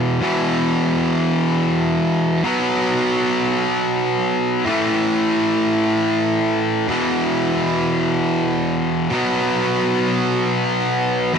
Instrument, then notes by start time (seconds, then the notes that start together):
distorted electric guitar
Already playing: E2 B2 E3
0.21 E2 B2 E3
2.43 B2 F#3 B3
4.66 A2 E3 A3
6.88 E2 B2 E3
9.10 B2 F#3 B3
11.34 E2 B2